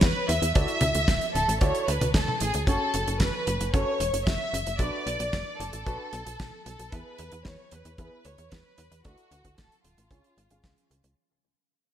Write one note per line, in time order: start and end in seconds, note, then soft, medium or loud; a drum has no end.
0.01 0.14 E2 loud
0.01 0.27 B4 loud
0.01 kick loud
0.01 snare loud
0.01 closed hi-hat medium
0.29 0.40 E2 medium
0.29 0.54 E5 loud
0.29 closed hi-hat medium
0.42 0.53 E2 medium
0.42 closed hi-hat medium
0.55 0.67 D2 loud
0.55 1.58 E4 medium
0.55 1.58 F#4 medium
0.55 1.58 A4 medium
0.55 1.58 D5 medium
0.55 1.31 E5 loud
0.55 kick loud
0.55 closed hi-hat medium
0.68 closed hi-hat soft
0.81 0.93 D2 medium
0.81 closed hi-hat medium
0.81 high tom medium
0.95 1.06 D2 medium
0.95 closed hi-hat medium
1.08 1.20 D1 loud
1.08 kick loud
1.08 snare loud
1.08 closed hi-hat medium
1.21 closed hi-hat soft
1.35 1.46 D1 medium
1.35 1.60 A4 medium
1.35 closed hi-hat medium
1.48 1.60 A1 medium
1.48 closed hi-hat medium
1.61 1.73 D2 loud
1.61 1.81 E4 medium
1.61 1.81 F#4 medium
1.61 1.81 A4 medium
1.61 1.86 C#5 loud
1.61 1.81 D5 medium
1.61 kick loud
1.61 closed hi-hat medium
1.75 closed hi-hat soft
1.88 1.99 D2 medium
1.88 2.15 B4 medium
1.88 closed hi-hat medium
2.01 2.13 D2 medium
2.01 closed hi-hat medium
2.01 high tom medium
2.14 2.26 D2 medium
2.14 2.39 A4 medium
2.14 kick loud
2.14 snare loud
2.14 closed hi-hat medium
2.28 high tom medium
2.40 2.52 A1 medium
2.40 2.66 G#4 medium
2.40 closed hi-hat medium
2.54 2.66 D2 medium
2.54 closed hi-hat medium
2.67 2.79 F#1 loud
2.67 3.71 C#4 medium
2.67 3.71 F#4 medium
2.67 3.71 A4 medium
2.67 3.17 A4 loud
2.67 3.71 C#5 medium
2.67 kick loud
2.67 closed hi-hat medium
2.94 3.06 F#1 medium
2.94 closed hi-hat medium
3.07 3.19 F#1 medium
3.07 closed hi-hat medium
3.20 3.32 F#1 loud
3.20 3.74 B4 medium
3.20 kick loud
3.20 snare loud
3.20 closed hi-hat medium
3.47 3.59 F#1 medium
3.47 closed hi-hat medium
3.61 3.72 F#1 medium
3.61 closed hi-hat medium
3.73 3.85 F#1 loud
3.73 3.94 C#4 medium
3.73 3.94 F#4 medium
3.73 3.94 A4 medium
3.73 3.94 C#5 medium
3.73 4.23 C#5 loud
3.73 kick loud
3.73 closed hi-hat medium
4.00 4.12 E1 medium
4.00 closed hi-hat medium
4.13 4.25 F#1 medium
4.13 closed hi-hat medium
4.27 4.38 F#1 loud
4.27 4.80 E5 loud
4.27 kick loud
4.27 snare loud
4.27 closed hi-hat medium
4.53 4.65 F#1 medium
4.53 closed hi-hat medium
4.67 4.78 F#1 medium
4.67 closed hi-hat medium
4.79 4.91 B1 loud
4.79 5.83 D4 medium
4.79 5.83 F#4 medium
4.79 5.83 A4 medium
4.79 5.83 B4 medium
4.79 5.59 D5 loud
4.79 kick loud
4.79 closed hi-hat medium
5.06 5.18 B1 medium
5.06 closed hi-hat medium
5.20 5.31 B1 medium
5.20 closed hi-hat medium
5.33 5.45 F#1 medium
5.33 kick loud
5.33 snare loud
5.33 closed hi-hat medium
5.60 5.71 F#1 medium
5.60 6.65 A4 loud
5.60 closed hi-hat medium
5.73 5.84 A1 medium
5.73 closed hi-hat medium
5.86 5.98 B1 medium
5.86 6.06 D4 medium
5.86 6.06 F#4 medium
5.86 6.06 A4 medium
5.86 6.06 B4 medium
5.86 kick loud
5.86 closed hi-hat medium
6.13 6.24 B1 medium
6.13 closed hi-hat medium
6.26 6.38 B1 medium
6.26 closed hi-hat medium
6.40 6.51 B1 loud
6.40 kick loud
6.40 snare loud
6.40 closed hi-hat medium
6.66 6.77 B1 medium
6.66 6.91 A4 medium
6.66 closed hi-hat medium
6.79 6.91 B1 medium
6.79 closed hi-hat medium
6.92 7.04 E2 loud
6.92 7.95 B3 medium
6.92 7.95 E4 medium
6.92 7.95 G#4 medium
6.92 7.45 B4 loud
6.92 7.95 B4 medium
6.92 kick loud
6.92 closed hi-hat medium
7.18 7.30 E2 medium
7.18 closed hi-hat medium
7.32 7.44 E2 medium
7.32 closed hi-hat medium
7.45 7.57 E2 loud
7.45 7.72 C#5 medium
7.45 kick loud
7.45 snare loud
7.45 closed hi-hat medium
7.71 7.84 E2 medium
7.71 7.98 B4 medium
7.71 closed hi-hat medium
7.85 7.97 E2 medium
7.85 closed hi-hat medium
7.98 8.10 E2 loud
7.98 8.19 B3 medium
7.98 8.19 E4 medium
7.98 8.19 G#4 medium
7.98 8.19 B4 medium
7.98 8.23 B4 medium
7.98 kick loud
7.98 closed hi-hat medium
8.25 8.37 D2 medium
8.25 8.52 C#5 medium
8.25 closed hi-hat medium
8.38 8.50 E2 medium
8.38 closed hi-hat medium
8.52 8.63 E2 medium
8.52 9.05 B4 medium
8.52 kick medium
8.52 snare loud
8.52 closed hi-hat medium
8.78 8.90 E2 medium
8.78 closed hi-hat medium
8.91 9.03 E2 medium
8.91 closed hi-hat medium
9.05 9.16 D2 loud
9.05 10.08 E4 medium
9.05 10.08 F#4 medium
9.05 9.54 F#4 medium
9.05 10.08 A4 medium
9.05 10.08 D5 medium
9.05 kick loud
9.05 closed hi-hat medium
9.18 closed hi-hat soft
9.31 9.43 D2 medium
9.31 closed hi-hat medium
9.45 9.56 D2 medium
9.45 kick soft
9.45 closed hi-hat medium
9.58 9.70 D1 loud
9.58 9.84 A4 medium
9.58 kick loud
9.58 snare medium
9.58 closed hi-hat medium
9.72 closed hi-hat soft
9.84 9.96 D1 medium
9.84 10.87 F4 medium
9.84 closed hi-hat medium
9.98 10.09 A1 medium
9.98 closed hi-hat medium
10.11 10.22 C#2 medium
10.11 10.31 C#4 medium
10.11 10.31 F4 medium
10.11 10.31 G#4 medium
10.11 10.31 C#5 medium
10.11 kick medium
10.11 closed hi-hat medium
10.24 closed hi-hat soft
10.37 10.49 G#1 medium
10.37 closed hi-hat medium
10.50 10.62 G#1 medium
10.50 11.14 C#4 medium
10.50 11.14 F4 medium
10.50 11.14 G#4 medium
10.50 11.14 F5 medium
10.50 closed hi-hat medium
10.64 10.75 C#2 medium
10.64 kick loud
10.64 snare loud
10.64 closed hi-hat medium
10.78 closed hi-hat soft
10.91 11.02 C#2 medium
10.91 closed hi-hat medium
11.04 11.15 C#2 medium
11.04 closed hi-hat medium